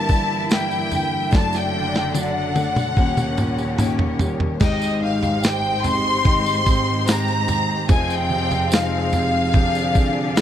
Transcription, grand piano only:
Already playing: G1 G2 D3 A#3 D4
0.10 D4
0.51 A#3
0.92 D3
1.33 F#1 F#2
1.75 D3
2.15 F#3
2.55 A3
2.97 D#1 D#2
3.38 A#2
3.79 D#3
4.20 G3
4.60 G#1 G#2
5.02 D#3
5.42 G4
5.84 C4
6.25 D#3
6.66 C4
7.06 G4
7.47 D#3
7.89 F1 F2
8.30 C3
8.72 G#3
9.13 C4
9.55 C3
9.96 C4
10.37 G#3

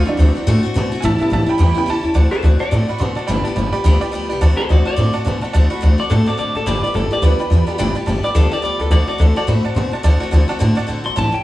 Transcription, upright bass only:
0.18 D2
0.35 muted upright bass stroke
0.47 A2
0.63 muted upright bass stroke
0.76 B2
0.93 muted upright bass stroke
1.03 A1
1.20 muted upright bass stroke
1.31 A1
1.49 muted upright bass stroke
1.59 E2
1.77 muted upright bass stroke
1.87 E2
2.03 E2
2.15 D2
2.43 D2
2.61 muted upright bass stroke
2.72 A2
2.89 muted upright bass stroke
3.01 B2
3.18 muted upright bass stroke
3.29 G1
3.45 muted upright bass stroke
3.56 G1
3.74 muted upright bass stroke
3.84 D2
4.02 muted upright bass stroke
4.13 D2
4.30 C2
4.42 D2
4.70 D2
4.98 A2
5.15 muted upright bass stroke
5.26 B2
5.43 muted upright bass stroke
5.55 D2
5.83 D2
6.11 A2
6.27 muted upright bass stroke
6.39 A2
6.55 A2
6.66 G1
6.83 muted upright bass stroke
6.95 G1
7.11 muted upright bass stroke
7.22 D2
7.51 E2
7.68 muted upright bass stroke
7.80 G1
7.96 muted upright bass stroke
8.07 G1
8.24 muted upright bass stroke
8.35 D2
8.52 muted upright bass stroke
8.63 D2
8.80 D2
8.90 D2
9.20 D2
9.48 A2
9.65 muted upright bass stroke
9.76 B2
9.92 muted upright bass stroke
10.04 D2
10.21 muted upright bass stroke
10.32 D2
10.61 A2
10.77 muted upright bass stroke
10.89 A2
11.06 G#1
11.17 A1
11.34 muted upright bass stroke

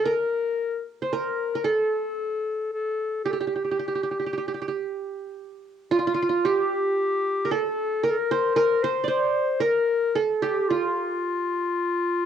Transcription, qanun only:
Already playing: G4 A4
0.05 A#4
1.02 C5
1.13 A#4
1.55 A#4
1.64 A4
3.26 G4
3.33 G4
3.41 G4
3.47 G4
3.56 G4
3.65 G4
3.71 G4
3.79 G4
3.88 G4
3.95 G4
4.03 G4
4.11 G4
4.20 G4
4.26 G4
4.33 G4
4.38 G4
4.48 G4
4.54 G4
4.62 G4
4.68 G4
5.91 F4
5.99 F4
6.07 F4
6.14 F4
6.22 F4
6.29 F4
6.45 G4
7.45 A#4
7.51 A4
8.04 A#4
8.31 C5
8.56 A#4
8.84 C5
9.04 D5
9.08 C5
9.60 A#4
10.15 A4
10.42 G4
10.70 F4

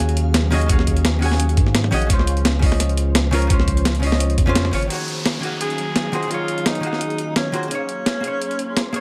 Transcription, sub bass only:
Already playing: D#2
0.70 D#2
1.57 G#2
1.92 A#1
2.10 C#2
3.50 C#2
4.38 F2
4.73 G#1

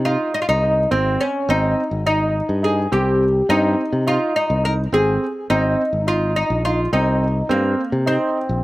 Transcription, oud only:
0.05 F4
0.34 D#4
0.42 F4
0.49 D#4
0.91 C4
1.21 C#4
1.50 D#4
2.07 D#4
2.64 G#4
2.93 G4
3.50 D#4
4.08 F4
4.36 D#4
4.65 A#4
4.94 G#4
5.50 D#4
6.08 F4
6.36 D#4
6.65 F4
6.93 D#4
7.51 A#3
8.07 C4

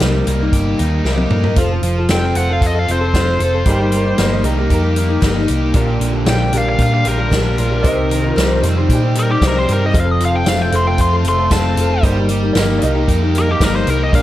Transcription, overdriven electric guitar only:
Already playing: C3 D#4 G4
0.00 G3
0.27 A#3
0.53 G4
0.79 D#4
1.05 G4
1.32 D#4
1.57 F3
1.84 F3
2.10 C4
2.36 F4
2.62 A4
2.87 C4
3.14 F4
3.40 A4
3.66 G3
3.93 G3
4.18 A#3
4.45 D#4
4.70 G4
4.96 A#3
5.22 D#4
5.48 G4
5.74 A#2
6.00 D3
6.27 G3
6.53 D4
6.80 F4
7.04 G3
7.31 D4
7.58 F4
7.85 C3
8.10 D#3
8.36 G3
8.63 C4
8.90 G4
9.17 G3
9.42 C4
9.69 G4
9.94 F2
10.21 F3
10.47 A3
10.73 C4
10.99 F4
11.25 A3
11.50 C4
11.77 F4
12.04 G3
12.30 G3
12.57 A#3
12.83 D#4
13.08 G4
13.34 A#3
13.61 D#4
13.87 G4
14.13 A#2

